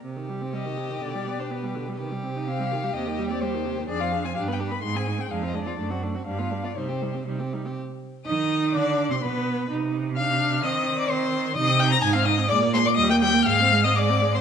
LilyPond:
<<
  \new Staff \with { instrumentName = "Violin" } { \time 2/4 \key c \minor \tempo 4 = 125 r4 ees''4 | d''8. c''16 b'4 | r4 f''4 | ees''8. d''16 c''4 |
d''16 f''8 aes''16 \tuplet 3/2 { f''8 g''8 b''8 } | c'''16 aes''8 g''16 \tuplet 3/2 { f''8 ees''8 d''8 } | r4 f''8. d''16 | c''4 r4 |
r4 ees'''4 | d'''8. c'''16 b''4 | r4 f'''4 | ees'''8. d'''16 c'''4 |
\key aes \lydian ees'''8 g'''16 bes'''16 aes'''16 f'''16 ees'''8 | d'''8 c'''16 d'''16 ees'''16 g'''16 g'''8 | f'''8. ees'''16 d'''8. c'''16 | }
  \new Staff \with { instrumentName = "Violin" } { \time 2/4 \key c \minor g'2~ | g'2 | g'2~ | g'2 |
aes'16 f'16 aes'16 f'16 g'16 b'16 g'16 b'16 | ees'16 aes'16 ees'16 aes'16 d'16 f'16 d'16 f'16 | d'16 fis'16 d'16 fis'16 d'16 f'16 d'16 f'16 | ees'16 g'16 ees'16 g'16 ees'16 g'16 ees'16 g'16 |
r4 ees''4 | d''8. c''16 b'4 | r4 f''4 | ees''8. d''16 c''4 |
\key aes \lydian ees''8 g''16 bes''16 aes''16 f''16 ees''8 | d''8 c''16 d''16 ees''16 g''16 g''8 | f''8. ees''16 d''8. c''16 | }
  \new Staff \with { instrumentName = "Viola" } { \time 2/4 \key c \minor c16 ees16 g16 c'16 g16 ees16 c16 ees16 | d16 g16 b16 d'16 b16 g16 d16 g16 | ees16 g16 c'16 ees'16 c'16 g16 ees16 g16 | c16 ees16 g16 c'16 g16 ees16 c16 ees16 |
d'16 c'16 d'16 c'16 d'16 b16 d'16 b16 | aes16 c'16 aes16 c'16 aes16 c'16 aes16 c'16 | a16 c'16 a16 c'16 g16 b16 g16 b16 | g16 c'16 g16 c'16 g16 c'16 g16 c'16 |
r4 ees'4 | d'8. c'16 b4 | ees'4 d'4 | c'4 c'4 |
\key aes \lydian ees'16 c'16 ees'16 c'16 ees'16 c'16 ees'16 c'16 | aes16 bes16 aes16 bes16 g16 bes16 g16 bes16 | aes16 c'16 aes16 c'16 aes16 c'16 aes16 c'16 | }
  \new Staff \with { instrumentName = "Cello" } { \clef bass \time 2/4 \key c \minor c2 | b,2 | c2 | ees,2 |
f,4 g,4 | aes,4 f,4 | fis,4 g,4 | c4 c4 |
r4 ees4 | d8. c16 b,4 | c2 | ees2 |
\key aes \lydian c4 aes,4 | bes,4 ees,4 | aes,2 | }
>>